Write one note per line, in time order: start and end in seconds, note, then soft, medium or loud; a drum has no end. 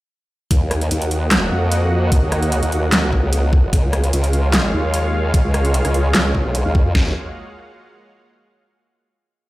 0.51 0.89 D#2 medium
0.51 3.70 A#3 medium
0.51 3.70 F#4 medium
0.51 3.70 D#5 medium
0.51 3.70 F#5 medium
0.51 kick loud
0.51 closed hi-hat medium
0.71 cross-stick medium
0.71 closed hi-hat medium
0.81 closed hi-hat medium
0.91 1.50 D#2 loud
0.91 closed hi-hat medium
1.02 closed hi-hat medium
1.11 closed hi-hat medium
1.31 snare loud
1.31 clap loud
1.31 closed hi-hat medium
1.51 2.10 F2 loud
1.72 closed hi-hat medium
2.12 2.21 D#2 loud
2.12 kick loud
2.12 closed hi-hat medium
2.22 2.61 D#2 loud
2.32 cross-stick medium
2.32 closed hi-hat medium
2.43 closed hi-hat medium
2.52 closed hi-hat medium
2.63 3.21 D#2 medium
2.63 closed hi-hat medium
2.72 closed hi-hat medium
2.92 snare loud
2.92 clap loud
2.92 closed hi-hat medium
3.12 kick medium
3.23 3.71 C#2 loud
3.33 closed hi-hat medium
3.53 kick loud
3.73 4.12 C#2 medium
3.73 6.92 G#3 medium
3.73 6.92 F4 medium
3.73 6.92 C#5 medium
3.73 6.92 F5 loud
3.73 kick loud
3.73 closed hi-hat medium
3.93 cross-stick medium
3.93 closed hi-hat medium
4.04 closed hi-hat medium
4.13 4.72 C#2 medium
4.13 closed hi-hat medium
4.24 closed hi-hat medium
4.33 closed hi-hat medium
4.53 snare loud
4.53 clap loud
4.53 closed hi-hat medium
4.74 5.32 D#2 loud
4.94 closed hi-hat medium
5.34 5.43 C#2 loud
5.34 kick loud
5.34 closed hi-hat medium
5.44 5.83 C#2 loud
5.54 cross-stick medium
5.54 closed hi-hat medium
5.65 closed hi-hat soft
5.74 closed hi-hat medium
5.85 6.13 C#2 medium
5.85 cross-stick medium
5.85 closed hi-hat medium
5.94 closed hi-hat soft
6.14 6.33 C#2 medium
6.14 snare loud
6.14 clap medium
6.14 closed hi-hat medium
6.35 6.44 C#2 loud
6.35 kick medium
6.45 6.64 B1 loud
6.55 closed hi-hat medium
6.65 6.84 D#2 loud
6.75 kick loud
6.85 6.93 F2 loud
6.95 7.14 D#2 loud
6.95 kick loud
6.95 snare loud